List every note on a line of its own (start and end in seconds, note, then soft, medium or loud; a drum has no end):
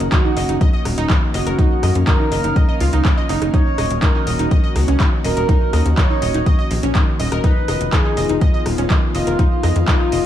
0.00 0.09 F#1 medium
0.00 3.50 D#3 medium
0.00 7.40 A#3 medium
0.00 7.40 C#4 medium
0.00 1.55 F#4 medium
0.00 closed hi-hat medium
0.12 0.17 D#3 medium
0.12 0.56 F#4 medium
0.12 kick loud
0.12 clap loud
0.12 closed hi-hat medium
0.25 0.32 D#4 medium
0.37 0.45 F#1 loud
0.37 0.41 D#5 medium
0.37 open hi-hat loud
0.49 0.57 F#1 medium
0.49 0.60 D#4 medium
0.49 closed hi-hat medium
0.61 0.69 D#5 loud
0.61 kick loud
0.61 closed hi-hat medium
0.73 0.81 D#5 loud
0.85 0.94 D#1 loud
0.85 cross-stick medium
0.85 open hi-hat loud
0.98 1.06 D#1 medium
0.98 1.05 D#4 loud
0.98 closed hi-hat medium
1.10 1.14 D#3 medium
1.10 kick loud
1.10 clap loud
1.10 closed hi-hat soft
1.34 1.43 F#1 medium
1.34 1.98 F#4 medium
1.34 1.46 D#5 medium
1.34 open hi-hat loud
1.47 1.55 F#1 medium
1.47 1.58 A#4 medium
1.47 closed hi-hat medium
1.59 1.66 D#4 loud
1.59 3.52 F5 medium
1.59 kick loud
1.59 closed hi-hat medium
1.83 1.92 F#2 loud
1.83 1.91 D#5 medium
1.83 cross-stick medium
1.83 open hi-hat loud
1.95 2.04 F#2 medium
1.95 closed hi-hat medium
2.07 2.12 D#3 medium
2.07 2.71 A#4 loud
2.07 kick loud
2.07 clap loud
2.07 closed hi-hat medium
2.20 2.27 D#4 medium
2.32 2.40 F#1 loud
2.32 2.36 D#5 medium
2.32 open hi-hat loud
2.44 2.52 F#1 medium
2.44 2.55 D#4 medium
2.44 closed hi-hat medium
2.56 2.64 D#5 loud
2.56 kick loud
2.56 closed hi-hat soft
2.69 2.76 D#5 loud
2.80 2.89 C#2 medium
2.80 2.85 F4 medium
2.80 open hi-hat loud
2.93 3.01 C#2 medium
2.93 3.04 D#4 loud
2.93 closed hi-hat medium
3.05 3.13 C#4 medium
3.05 kick loud
3.05 clap loud
3.05 closed hi-hat soft
3.18 3.22 D#5 loud
3.29 3.38 F#1 loud
3.29 3.34 D#4 loud
3.29 open hi-hat loud
3.42 3.50 F#1 medium
3.42 3.46 D#4 medium
3.42 cross-stick medium
3.42 closed hi-hat medium
3.54 10.26 D#3 medium
3.54 3.62 D#4 loud
3.54 7.40 F#4 medium
3.54 3.98 C#5 loud
3.54 kick loud
3.54 closed hi-hat soft
3.78 3.87 D#1 medium
3.78 3.86 D#5 medium
3.78 cross-stick medium
3.78 open hi-hat loud
3.90 3.99 D#1 medium
3.90 closed hi-hat medium
4.02 4.07 D#3 medium
4.02 4.46 A#4 medium
4.02 kick loud
4.02 clap loud
4.02 closed hi-hat medium
4.15 4.22 D#4 medium
4.27 4.36 D#1 medium
4.27 4.32 D#5 medium
4.27 open hi-hat loud
4.39 4.48 D#1 medium
4.39 4.51 D#4 medium
4.39 closed hi-hat medium
4.51 4.59 D#5 loud
4.51 kick loud
4.51 closed hi-hat soft
4.64 4.71 D#5 medium
4.76 4.84 C#2 medium
4.76 cross-stick medium
4.76 open hi-hat loud
4.88 4.96 C#2 medium
4.88 4.96 C#4 medium
4.88 closed hi-hat medium
5.00 5.05 D#3 medium
5.00 kick loud
5.00 clap loud
5.00 closed hi-hat medium
5.24 5.33 D#1 loud
5.24 5.88 A#4 loud
5.24 5.36 D#5 medium
5.24 open hi-hat loud
5.37 5.45 D#1 medium
5.37 5.48 A#4 medium
5.37 closed hi-hat medium
5.49 5.57 D#4 loud
5.49 kick loud
5.49 closed hi-hat medium
5.73 5.82 D#2 medium
5.73 5.81 D#5 medium
5.73 cross-stick medium
5.73 open hi-hat loud
5.86 5.94 D#2 medium
5.86 closed hi-hat medium
5.98 6.02 D#3 medium
5.98 6.61 C#5 loud
5.98 kick loud
5.98 clap loud
5.98 closed hi-hat medium
6.10 6.17 D#4 medium
6.22 6.31 D#1 loud
6.22 6.27 D#5 medium
6.22 open hi-hat loud
6.34 6.43 D#1 medium
6.34 6.46 D#4 medium
6.34 closed hi-hat medium
6.46 6.54 D#5 loud
6.46 kick loud
6.46 closed hi-hat medium
6.59 6.66 D#5 medium
6.71 6.79 A#1 medium
6.71 open hi-hat loud
6.83 6.92 A#1 medium
6.83 6.91 C#4 medium
6.83 closed hi-hat medium
6.95 7.00 D#3 medium
6.95 kick loud
6.95 clap loud
6.95 closed hi-hat medium
7.20 7.28 D#1 loud
7.20 7.31 D#5 medium
7.20 open hi-hat loud
7.32 7.40 D#1 medium
7.32 7.43 A#4 medium
7.32 cross-stick medium
7.32 closed hi-hat medium
7.44 10.26 G#3 medium
7.44 10.26 B3 medium
7.44 7.52 D#4 loud
7.44 10.26 F4 medium
7.44 7.94 B4 loud
7.44 kick loud
7.44 closed hi-hat medium
7.68 7.77 F1 medium
7.68 7.76 D#5 medium
7.68 cross-stick medium
7.68 open hi-hat loud
7.81 7.89 F1 medium
7.81 closed hi-hat medium
7.93 7.97 D#3 medium
7.93 8.37 G#4 medium
7.93 kick loud
7.93 clap loud
7.93 closed hi-hat medium
8.05 8.13 D#4 medium
8.17 8.26 F1 loud
8.17 8.22 D#5 medium
8.17 open hi-hat loud
8.29 8.38 F1 medium
8.29 8.41 D#4 medium
8.29 closed hi-hat medium
8.41 8.49 D#5 loud
8.41 kick loud
8.41 closed hi-hat medium
8.54 8.61 D#5 loud
8.66 8.75 D#1 medium
8.66 cross-stick medium
8.66 open hi-hat loud
8.78 8.87 D#1 medium
8.78 8.86 C#4 medium
8.78 closed hi-hat medium
8.90 8.95 D#3 medium
8.90 kick loud
8.90 clap loud
8.90 closed hi-hat medium
9.15 9.23 F1 medium
9.15 9.78 F4 loud
9.15 9.26 D#5 medium
9.15 open hi-hat loud
9.27 9.35 F1 medium
9.27 9.38 A#4 medium
9.27 closed hi-hat medium
9.39 9.47 D#4 loud
9.39 kick loud
9.39 closed hi-hat medium
9.63 9.72 F2 medium
9.63 9.71 D#5 medium
9.63 cross-stick medium
9.63 open hi-hat loud
9.76 9.84 F2 medium
9.76 closed hi-hat medium
9.88 9.92 D#3 medium
9.88 10.26 F4 loud
9.88 kick loud
9.88 clap loud
9.88 closed hi-hat medium
10.00 10.08 D#4 medium
10.12 10.21 F1 loud
10.12 10.17 D#5 medium
10.12 open hi-hat loud